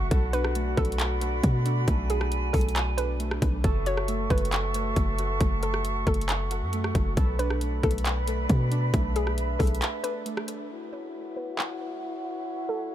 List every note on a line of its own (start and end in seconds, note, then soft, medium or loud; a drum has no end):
0.00 0.10 F#1 loud
0.00 0.11 A3 medium
0.00 0.11 F#4 medium
0.00 3.40 F#4 medium
0.00 1.84 F#5 medium
0.11 0.75 B1 loud
0.11 1.43 A4 loud
0.11 3.32 D5 medium
0.11 3.39 B5 medium
0.11 kick loud
0.11 closed hi-hat medium
0.33 1.64 D4 medium
0.33 0.75 B4 medium
0.33 closed hi-hat medium
0.44 cross-stick loud
0.55 1.20 A3 medium
0.55 closed hi-hat medium
0.77 1.41 B1 loud
0.77 1.40 A4 medium
0.77 kick medium
0.77 closed hi-hat soft
0.85 closed hi-hat soft
0.92 closed hi-hat medium
0.99 clap loud
0.99 closed hi-hat medium
1.21 1.87 A3 medium
1.21 closed hi-hat medium
1.44 1.86 B2 loud
1.44 kick medium
1.44 closed hi-hat medium
1.65 2.97 D4 medium
1.65 closed hi-hat medium
1.88 2.51 B1 loud
1.88 2.52 A3 medium
1.88 3.34 G#5 medium
1.88 kick loud
1.88 closed hi-hat medium
2.10 2.51 G#4 medium
2.10 closed hi-hat medium
2.21 cross-stick loud
2.32 closed hi-hat medium
2.53 3.39 B1 loud
2.53 3.18 A3 medium
2.53 2.95 A4 medium
2.53 kick medium
2.53 closed hi-hat soft
2.53 open hi-hat soft
2.61 closed hi-hat soft
2.69 closed hi-hat medium
2.76 clap loud
2.76 closed hi-hat medium
2.98 3.64 D4 medium
2.98 3.60 B4 medium
2.98 closed hi-hat medium
3.19 3.64 A3 medium
3.19 closed hi-hat medium
3.31 cross-stick loud
3.42 3.63 B1 loud
3.42 kick medium
3.42 closed hi-hat medium
3.64 4.28 F#1 loud
3.64 7.13 A4 medium
3.64 4.97 A4 medium
3.64 7.13 E5 medium
3.64 8.89 F#5 medium
3.64 7.13 C#6 medium
3.64 kick loud
3.64 closed hi-hat medium
3.86 5.18 F#4 medium
3.86 4.28 C#5 medium
3.86 closed hi-hat medium
3.97 cross-stick medium
4.08 4.73 A3 medium
4.08 closed hi-hat medium
4.30 4.94 F#1 loud
4.30 4.93 B4 medium
4.30 kick medium
4.30 closed hi-hat soft
4.38 closed hi-hat soft
4.45 closed hi-hat medium
4.52 clap loud
4.52 closed hi-hat medium
4.74 5.39 A3 medium
4.74 closed hi-hat medium
4.96 5.39 F#1 loud
4.96 kick medium
4.96 closed hi-hat medium
5.18 6.50 F#4 medium
5.18 closed hi-hat medium
5.41 6.04 F#1 loud
5.41 6.05 A3 medium
5.41 kick loud
5.41 closed hi-hat medium
5.63 6.04 A4 medium
5.63 closed hi-hat medium
5.74 cross-stick loud
5.85 closed hi-hat medium
6.07 6.63 F#1 loud
6.07 6.72 A3 medium
6.07 6.69 A4 medium
6.07 kick medium
6.07 closed hi-hat soft
6.14 closed hi-hat medium
6.21 closed hi-hat medium
6.29 clap loud
6.29 closed hi-hat medium
6.51 7.17 F#4 medium
6.51 closed hi-hat medium
6.62 6.93 F#2 loud
6.73 7.17 A3 medium
6.73 closed hi-hat medium
6.84 cross-stick loud
6.95 7.16 F#1 loud
6.95 kick medium
6.95 closed hi-hat medium
7.17 7.81 B1 loud
7.17 8.49 A4 medium
7.17 10.45 B4 medium
7.17 10.39 D5 medium
7.17 10.45 B5 medium
7.17 kick loud
7.17 closed hi-hat medium
7.39 8.70 D4 medium
7.39 7.81 B4 medium
7.39 closed hi-hat medium
7.50 cross-stick medium
7.61 8.26 A3 medium
7.61 closed hi-hat medium
7.83 8.47 B1 loud
7.83 8.46 A4 medium
7.83 kick medium
7.83 closed hi-hat soft
7.91 closed hi-hat medium
7.98 closed hi-hat medium
8.05 clap loud
8.05 closed hi-hat medium
8.27 8.93 A3 medium
8.27 closed hi-hat medium
8.49 8.92 B2 loud
8.49 kick medium
8.49 closed hi-hat medium
8.71 10.03 D4 medium
8.71 closed hi-hat medium
8.94 9.57 B1 loud
8.94 9.58 A3 medium
8.94 10.40 E5 medium
8.94 kick loud
8.94 closed hi-hat medium
9.16 9.57 G#4 medium
9.16 closed hi-hat medium
9.27 cross-stick medium
9.38 closed hi-hat medium
9.59 9.81 B1 loud
9.59 10.24 A3 medium
9.59 10.01 A4 medium
9.59 kick medium
9.59 closed hi-hat soft
9.59 open hi-hat soft
9.67 closed hi-hat medium
9.75 closed hi-hat medium
9.82 clap loud
9.82 closed hi-hat medium
10.04 10.70 D4 medium
10.04 10.66 B4 medium
10.04 closed hi-hat medium
10.25 10.70 A3 medium
10.25 closed hi-hat medium
10.37 cross-stick loud
10.48 closed hi-hat medium
10.70 12.95 E4 medium
10.70 12.95 F#4 medium
10.70 12.95 C#5 medium
10.70 12.95 F#5 medium
10.92 11.34 C#5 medium
11.36 11.99 B4 medium
11.59 clap loud
12.69 12.95 A4 medium